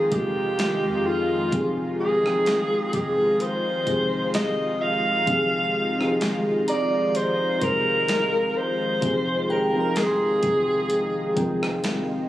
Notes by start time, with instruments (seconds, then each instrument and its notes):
Already playing: analog synth pad D#3 G#3 D#4 F4, fm electric piano F3 C4 D#4 A4 A#4 G5, alto saxophone G#4, synth bell F5
0.12 808-style bass F1, alto saxophone G4, kick, closed hi-hat
0.59 snare, closed hi-hat
0.85 808-style bass F2
1.06 alto saxophone F4
1.50 808-style bass F1, fm electric piano F3 C4 D#4 G4, kick, closed hi-hat
1.55 fm electric piano G#4
2.00 alto saxophone G#4
2.23 fm electric piano F3 C4 D#4 G5, cross-stick
2.27 fm electric piano G#4
2.46 snare, closed hi-hat
2.93 808-style bass F1, alto saxophone G#4, kick, closed hi-hat
3.40 alto saxophone C5, closed hi-hat
3.85 808-style bass F1, fm electric piano F3 C4 D#4 G4, kick, closed hi-hat
3.90 fm electric piano G#4
4.34 alto saxophone D#5, snare, closed hi-hat
4.81 alto saxophone F5
5.26 808-style bass F1, fm electric piano F3 C4 D#4 G4, kick, closed hi-hat
5.30 fm electric piano G#4
5.97 fm electric piano F3 C4 D#4 G4, cross-stick
6.02 fm electric piano G#4
6.21 snare, closed hi-hat
6.68 alto saxophone D5, synth bell A#5, closed hi-hat
7.15 alto saxophone C5, closed hi-hat
7.62 808-style bass F1, alto saxophone A#4, kick, closed hi-hat
8.08 snare, closed hi-hat
8.57 alto saxophone C5
9.00 808-style bass F1, fm electric piano F3 C4 D#4 G4, kick, closed hi-hat
9.05 fm electric piano G#4
9.50 alto saxophone A#4, synth bell G5
9.73 fm electric piano F3 C4 D#4 G5
9.77 fm electric piano A#4, synth bell A#5
9.96 alto saxophone G#4, snare, closed hi-hat
10.06 synth bell C6
10.43 808-style bass F1, kick, closed hi-hat
10.90 closed hi-hat
11.34 808-style bass F1, fm electric piano F3 C4 D#4 G5, kick, closed hi-hat
11.39 fm electric piano A#4
11.63 cross-stick
11.84 snare, closed hi-hat